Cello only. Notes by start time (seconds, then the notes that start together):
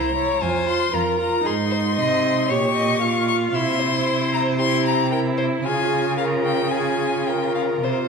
Already playing: C2
0.42 F2
0.93 F2
1.46 G#2
1.98 C3
2.51 A#2
3.55 C3
5.65 C#3
7.83 C3